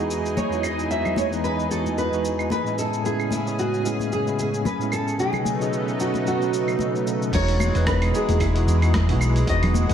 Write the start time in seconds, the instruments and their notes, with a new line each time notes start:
Already playing: tine electric piano E2 G#3 B3, analog synth pad E3 D#4 G#4, nylon-string guitar G#4
0.00 tine electric piano D#4 F#4
0.11 shaker
0.22 tine electric piano E2 G#3 B3 D#4 F#4, shaker
0.37 nylon-string guitar C#5, high conga, low conga, shaker
0.49 tine electric piano E2 G#3 B3 D#4 F#4, shaker
0.63 nylon-string guitar D#5, claves, shaker
0.79 shaker
0.88 tine electric piano E2 G#3 B3 D#4 F#4, nylon-string guitar E5, shaker
1.05 low conga, claves, shaker
1.16 nylon-string guitar C#5, high conga, shaker
1.30 tine electric piano E2 G#3 B3 D#4 B4, shaker
1.44 nylon-string guitar B4, shaker
1.59 shaker
1.68 tine electric piano E2 G#3 B3 D#4 F#4, nylon-string guitar A4, shaker
1.86 high conga, shaker
1.98 nylon-string guitar B4, shaker
2.10 tine electric piano E2 G#3 B3 D#4 F#4, shaker
2.25 shaker
2.37 tine electric piano E2 G#3 B3 D#4 F#4, claves, shaker
2.50 nylon-string guitar B4, high conga, shaker
2.64 tine electric piano A2 G#3 B3 C#4 E4, shaker
2.78 analog synth pad C#3 G#4, nylon-string guitar A4, shaker
2.93 shaker
3.02 tine electric piano A2 G#3 B3 C#4 E4, nylon-string guitar G#4, shaker
3.20 claves, shaker
3.31 nylon-string guitar E4, high conga, shaker
3.45 tine electric piano A2 G#3 B3 C#4 G#4, shaker
3.59 nylon-string guitar F#4, shaker
3.74 shaker
3.83 tine electric piano A2 G#3 B3 C#4 E4, nylon-string guitar G#4, shaker
4.00 high conga, shaker
4.12 nylon-string guitar G#4, shaker
4.25 tine electric piano A2 G#3 B3 C#4 E4, shaker
4.39 nylon-string guitar G#4, shaker
4.52 tine electric piano A2 G#3 B3 C#4 E4, shaker
4.65 nylon-string guitar B4, high conga, low conga, shaker
4.79 tine electric piano A2 G#3 B3 C#4 E4, shaker
4.92 nylon-string guitar A4, claves, shaker
5.08 shaker
5.17 tine electric piano B2 F#3 A3 C#4 D#4, analog synth pad A3 B3 D#4, nylon-string guitar G#4, shaker
5.33 low conga, claves, shaker
5.45 high conga, shaker
5.59 tine electric piano B2 F#3 A3 C#4 G#4, shaker
5.73 shaker
5.88 shaker
5.98 tine electric piano B2 F#3 A3 C#4 D#4, nylon-string guitar F#4, shaker
6.14 high conga, shaker
6.27 nylon-string guitar F#4, shaker
6.40 tine electric piano B2 F#3 A3 C#4 D#4, shaker
6.52 tine electric piano B2 F#3 A3 C#4 F#4, shaker
6.68 claves, shaker
6.79 high conga, shaker
6.93 tine electric piano B2 F#3 A3 C#4 D#4, shaker
7.07 shaker
7.22 shaker
7.32 fingered electric bass E1, analog synth pad E3 G#3, tine electric piano G#3 B3 D#4 F#4, nylon-string guitar C#5, kick, open hi-hat, crash, shaker
7.48 open hi-hat, shaker
7.60 high conga, claves, shaker
7.73 fingered electric bass E1, tine electric piano G#3 B3 D#4 B4, open hi-hat, shaker
7.87 nylon-string guitar B4, kick, cross-stick, open hi-hat, shaker
8.02 open hi-hat, claves, shaker
8.12 tine electric piano G#3 B3 D#4 F#4, nylon-string guitar G#4, shaker
8.29 fingered electric bass E1, open hi-hat, high conga, shaker
8.40 nylon-string guitar E4, kick, open hi-hat, claves, shaker
8.54 tine electric piano G#3 B3 D#4 F#4, open hi-hat, shaker
8.67 fingered electric bass E2, shaker
8.80 tine electric piano G#3 B3 D#4 F#4, open hi-hat, claves, shaker
8.94 kick, cross-stick, open hi-hat, high conga, low conga, shaker
9.07 fingered electric bass B1, tine electric piano G#3 B3 D#4 F#4, open hi-hat, shaker
9.21 claves, shaker
9.36 open hi-hat, shaker
9.46 fingered electric bass E1, tine electric piano G#3 B3 D#4 F#4, analog synth pad F#4, nylon-string guitar D#5, kick, open hi-hat, shaker
9.63 open hi-hat, low conga, claves, shaker
9.74 high conga, shaker
9.88 fingered electric bass E1, tine electric piano G#3 B3 D#4, open hi-hat, shaker